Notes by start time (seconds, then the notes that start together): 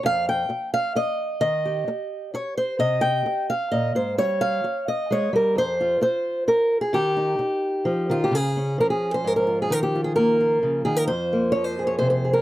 0.03 F2 F5
0.29 G5
0.49 muted steel-string acoustic guitar stroke
0.74 F5
0.95 D#5, muted steel-string acoustic guitar stroke
1.41 D#3 D#5
1.65 G4
1.88 muted steel-string acoustic guitar stroke
2.34 C#5, muted steel-string acoustic guitar stroke
2.57 C5
2.79 C3 D#5
3.01 G5
3.26 muted steel-string acoustic guitar stroke
3.50 F5
3.71 A#2 D#5
3.95 G#2 C5
4.18 G3 C#5
4.41 F5
4.64 muted steel-string acoustic guitar stroke
4.88 D#5
5.11 G#3 C#5
5.33 G3 A#4
5.55 F2 C5
5.80 F4
6.01 C5, muted steel-string acoustic guitar stroke
6.48 A#4, muted steel-string acoustic guitar stroke
6.81 G#4
6.93 D#3 G4
7.17 D#4
7.39 muted steel-string acoustic guitar stroke
7.85 F3
8.10 D#3 F4
8.24 G4
8.31 C#3 G#4
8.57 C#4
8.78 F3 A#4
8.90 G#4
9.14 C5
9.24 G#2 A#4
9.36 A#4
9.47 F4
9.62 G#4
9.70 D#3 A#4
9.83 G4
9.95 F4
10.04 G#4
10.16 A#3 A#4
10.40 F4
10.63 C#3
10.85 D#3 G#4
10.96 A#4
11.07 F2 C5
11.33 A#3
11.52 F3 C#5
11.64 C5
11.79 G#4
11.87 C#5
11.99 C3 C5
12.10 C5
12.25 G#4
12.33 A#4